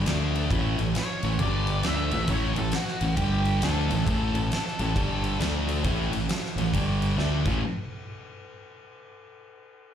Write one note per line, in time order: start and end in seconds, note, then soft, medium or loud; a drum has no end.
0.06 0.48 D2 medium
0.06 0.50 D3 medium
0.06 0.23 A3 loud
0.06 0.51 A3 medium
0.06 0.24 D4 medium
0.06 0.51 D4 medium
0.06 0.24 A4 loud
0.06 0.24 D5 loud
0.06 snare loud
0.06 ride medium
0.35 0.45 A3 loud
0.35 0.45 D4 medium
0.35 0.46 A4 loud
0.35 0.45 B4 loud
0.35 ride medium
0.50 0.77 A1 medium
0.50 0.78 A2 medium
0.50 0.79 E3 medium
0.50 0.79 A3 medium
0.50 0.68 C#4 loud
0.50 0.68 E4 loud
0.50 0.68 A4 loud
0.50 0.68 C#5 loud
0.50 kick loud
0.50 ride medium
0.79 0.94 A1 medium
0.79 0.93 A2 medium
0.79 0.93 E3 medium
0.79 0.89 C#4 medium
0.79 0.89 E4 medium
0.79 0.90 A4 medium
0.79 0.89 C#5 medium
0.79 ride medium
0.94 1.12 C#4 medium
0.94 1.12 E4 medium
0.94 1.12 A4 medium
0.94 1.12 C#5 medium
0.94 snare loud
0.94 ride medium
0.99 1.41 C#5 medium
1.22 1.38 A1 medium
1.22 1.37 A2 medium
1.22 1.37 E3 medium
1.22 1.33 C#4 medium
1.22 1.33 E4 medium
1.22 1.33 A4 medium
1.22 1.33 C#5 medium
1.22 ride medium
1.39 1.81 G1 medium
1.39 1.84 G2 medium
1.39 1.82 D3 medium
1.39 1.56 G3 medium
1.39 1.84 G3 loud
1.39 1.57 D4 medium
1.39 1.56 G4 medium
1.39 1.57 D5 medium
1.39 1.86 D5 medium
1.39 kick medium
1.39 ride medium
1.66 1.77 G3 medium
1.66 1.77 D4 medium
1.66 1.78 G4 medium
1.66 1.78 D5 medium
1.66 ride medium
1.81 2.10 D2 loud
1.81 2.11 D3 medium
1.81 2.12 A3 medium
1.81 2.00 C#4 medium
1.81 2.12 D4 medium
1.81 2.00 E4 medium
1.81 2.01 A4 medium
1.81 2.01 C#5 medium
1.81 snare loud
1.81 ride medium
1.87 2.31 E5 loud
2.08 2.27 A1 medium
2.08 2.25 A2 medium
2.08 2.21 C#4 medium
2.08 2.20 E4 medium
2.08 2.21 A4 medium
2.08 2.21 C#5 loud
2.08 ride medium
2.12 2.25 E3 medium
2.26 2.55 A1 loud
2.26 2.56 A2 medium
2.26 2.57 E3 loud
2.26 2.45 C#4 medium
2.26 2.44 E4 medium
2.26 2.45 A4 medium
2.26 2.45 C#5 loud
2.26 kick loud
2.26 ride medium
2.30 2.57 A3 loud
2.30 2.59 C#5 medium
2.56 2.72 A1 medium
2.56 2.70 A2 medium
2.56 2.71 E3 medium
2.56 2.67 C#4 medium
2.56 2.67 E4 medium
2.56 2.67 A4 medium
2.56 2.74 A4 medium
2.56 2.67 C#5 medium
2.56 ride medium
2.71 2.89 C#4 medium
2.71 2.90 E4 medium
2.71 3.15 F#4 medium
2.71 2.90 A4 medium
2.71 2.90 C#5 medium
2.71 snare loud
2.71 ride medium
2.88 snare soft
3.01 3.16 A1 medium
3.01 3.15 A2 medium
3.01 3.15 E3 medium
3.01 3.12 C#4 medium
3.01 3.12 E4 medium
3.01 3.12 A4 medium
3.01 3.12 C#5 medium
3.01 ride medium
3.15 3.59 G1 medium
3.15 3.61 G2 medium
3.15 3.61 D3 medium
3.15 3.34 G3 medium
3.15 3.62 G3 loud
3.15 3.34 D4 medium
3.15 3.34 G4 medium
3.15 3.63 G4 medium
3.15 3.34 D5 medium
3.15 kick loud
3.15 ride medium
3.45 3.56 G3 medium
3.45 3.55 D4 medium
3.45 3.56 G4 medium
3.45 3.56 D5 medium
3.45 ride medium
3.62 3.88 D2 medium
3.62 3.90 D3 medium
3.62 3.90 A3 medium
3.62 3.80 C#4 medium
3.62 3.90 D4 medium
3.62 3.80 E4 medium
3.62 5.36 A4 medium
3.62 3.80 A4 medium
3.62 3.80 C#5 loud
3.62 snare loud
3.62 ride medium
3.89 4.05 A1 medium
3.89 4.04 A2 medium
3.89 4.04 E3 medium
3.89 4.00 C#4 loud
3.89 4.00 E4 medium
3.89 4.00 A4 medium
3.89 4.00 E5 loud
3.89 ride medium
4.06 4.33 A1 medium
4.06 4.34 A2 medium
4.06 4.34 E3 loud
4.06 4.35 A3 loud
4.06 4.24 C#4 medium
4.06 4.25 E4 medium
4.06 4.24 A4 medium
4.06 4.25 C#5 loud
4.06 kick loud
4.06 ride medium
4.33 4.50 A1 medium
4.33 4.48 A2 medium
4.33 4.48 E3 medium
4.33 4.44 C#4 medium
4.33 4.44 E4 medium
4.33 4.44 A4 medium
4.33 4.45 C#5 medium
4.33 ride medium
4.50 4.67 C#4 medium
4.50 4.68 E4 medium
4.50 4.68 A4 medium
4.50 4.68 E5 medium
4.50 snare loud
4.50 ride medium
4.68 snare soft
4.79 4.94 A1 medium
4.79 4.93 A2 medium
4.79 4.93 E3 medium
4.79 4.90 C#4 medium
4.79 4.90 E4 medium
4.79 4.90 A4 medium
4.79 4.90 C#5 loud
4.79 ride medium
4.95 5.37 G1 medium
4.95 5.40 G2 medium
4.95 5.39 D3 medium
4.95 5.13 G3 medium
4.95 5.41 G3 loud
4.95 5.13 D4 medium
4.95 5.13 G4 medium
4.95 5.13 D5 medium
4.95 kick loud
4.95 ride medium
5.23 5.33 G3 medium
5.23 5.33 D4 medium
5.23 5.34 G4 medium
5.23 5.34 D5 medium
5.23 ride medium
5.39 5.82 D2 medium
5.39 5.84 D3 loud
5.39 5.57 A3 loud
5.39 5.85 A3 medium
5.39 5.57 D4 medium
5.39 5.85 D4 medium
5.39 5.57 A4 loud
5.39 5.57 D5 loud
5.39 snare loud
5.39 ride medium
5.68 5.78 A3 loud
5.68 5.78 D4 loud
5.68 5.78 A4 loud
5.68 5.78 D5 loud
5.68 ride medium
5.82 6.10 A1 loud
5.82 6.12 A2 medium
5.82 6.13 E3 medium
5.82 6.01 C#4 loud
5.82 6.01 E4 loud
5.82 6.01 A4 medium
5.82 6.01 C#5 loud
5.82 kick loud
5.82 ride medium
5.87 6.13 A3 loud
6.11 6.27 A1 medium
6.11 6.26 A2 medium
6.11 6.26 E3 medium
6.11 6.22 C#4 medium
6.11 6.22 E4 medium
6.11 6.22 A4 medium
6.11 6.22 C#5 medium
6.11 ride medium
6.28 6.46 C#4 medium
6.28 6.46 E4 medium
6.28 6.46 A4 medium
6.28 6.46 E5 medium
6.28 snare loud
6.28 ride medium
6.45 snare soft
6.55 6.72 A1 medium
6.55 6.71 A2 medium
6.55 6.66 C#4 medium
6.55 6.66 E4 medium
6.55 6.66 A4 medium
6.55 6.66 C#5 medium
6.55 ride medium
6.59 6.71 E3 medium
6.72 7.15 G1 medium
6.72 7.17 G2 medium
6.72 7.16 D3 medium
6.72 6.90 G3 medium
6.72 7.17 G3 loud
6.72 6.90 D4 medium
6.72 6.90 G4 medium
6.72 6.91 D5 medium
6.72 kick medium
6.72 ride medium
7.02 7.12 G3 medium
7.02 7.12 D4 medium
7.02 7.12 G4 medium
7.02 7.12 B4 medium
7.02 7.10 A5 medium
7.02 ride medium
7.10 7.17 G5 medium
7.17 7.44 D2 medium
7.17 7.46 D3 medium
7.17 7.35 A3 loud
7.17 7.46 A3 medium
7.17 7.35 D4 loud
7.17 7.46 D4 medium
7.17 7.35 A4 loud
7.17 7.35 D5 loud
7.17 7.44 F#5 medium
7.17 snare medium
7.45 7.61 A1 loud
7.45 7.59 A2 medium
7.45 7.60 E3 loud
7.45 7.60 A3 loud
7.45 7.61 C#4 medium
7.45 7.61 E4 medium
7.45 7.61 A4 medium
7.45 7.62 C#5 medium
7.45 kick loud
7.45 crash medium